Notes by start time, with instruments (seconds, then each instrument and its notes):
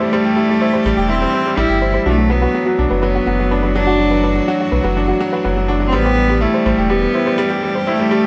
Already playing: string quartet E3 A3 D4 G4, cello A3, grand piano E4 G4
0.00 grand piano G3, synth arpeggio sound C5
0.13 grand piano G3, synth arpeggio sound C5
0.25 grand piano G4
0.36 grand piano E4, synth arpeggio sound G4
0.49 grand piano G3
0.61 grand piano E4, synth arpeggio sound C5
0.73 grand piano G3, synth arpeggio sound C5
0.85 sub bass A1, grand piano G3
0.97 sub bass E1, synth arpeggio sound G4, grand piano G4
1.09 cello C4, grand piano E4
1.22 grand piano G3, synth arpeggio sound C5
1.34 grand piano E4, synth arpeggio sound C5
1.46 grand piano G3
1.57 sub bass A1, grand piano G3, cello E4, synth arpeggio sound G4
1.70 sub bass G1, grand piano G4
1.81 grand piano E4, synth arpeggio sound C5
1.94 grand piano G3, synth arpeggio sound C5
2.06 sub bass B1, cello A3, grand piano D4, synth arpeggio sound F#4
2.15 grand piano F#3, string quartet A3
2.30 grand piano F#3, cello B3, synth arpeggio sound B4
2.41 string quartet D4, grand piano F#4, synth arpeggio sound B4
2.54 grand piano F#3
2.66 grand piano F#3, synth arpeggio sound F#4
2.79 sub bass B1, grand piano D4
2.90 sub bass F#1, grand piano F#3, synth arpeggio sound B4
3.02 grand piano F#3, cello B3, synth arpeggio sound B4
3.15 grand piano F#4
3.27 sub bass F#1, grand piano F#3, synth arpeggio sound F#4
3.40 grand piano F#3
3.51 grand piano D4, synth arpeggio sound B4
3.61 grand piano F#3, string quartet F#4, synth arpeggio sound B4
3.76 grand piano F#3, cello D4
3.87 synth arpeggio sound F#4, grand piano F#4
3.99 grand piano F#3
4.11 grand piano F#3, synth arpeggio sound B4
4.23 grand piano D4, synth arpeggio sound B4
4.36 grand piano F#3
4.48 grand piano F#3, synth arpeggio sound F#4
4.61 grand piano F#4
4.72 sub bass B1, grand piano F#3, synth arpeggio sound B4
4.84 sub bass F#1, grand piano F#3, synth arpeggio sound B4
4.97 grand piano D4
5.08 grand piano F#3, synth arpeggio sound F#4
5.21 grand piano F#3
5.32 grand piano F#4, synth arpeggio sound B4
5.45 sub bass F#1, grand piano F#3, synth arpeggio sound B4
5.57 grand piano F#3
5.68 grand piano D4, synth arpeggio sound F#4
5.80 grand piano F#3
5.87 cello C4
5.93 sub bass A1, grand piano G3, cello B3, synth arpeggio sound C5
6.05 grand piano G4, synth arpeggio sound C5
6.17 grand piano G3
6.29 grand piano G3, synth arpeggio sound G4
6.41 cello A3, grand piano E4
6.54 grand piano G3, synth arpeggio sound C5
6.66 sub bass A1, grand piano G3, synth arpeggio sound C5
6.78 sub bass E1, grand piano G4
6.90 grand piano G3, cello B3, synth arpeggio sound G4
7.02 grand piano G3
7.14 grand piano E4, string quartet G4, synth arpeggio sound C5
7.26 grand piano G3, synth arpeggio sound C5
7.38 grand piano G3
7.50 grand piano G4, synth arpeggio sound G4
7.63 grand piano G3
7.75 grand piano G3, synth arpeggio sound C5
7.87 cello A3, grand piano E4, synth arpeggio sound C5
7.99 grand piano G3
8.11 grand piano G3, synth arpeggio sound G4
8.23 grand piano G4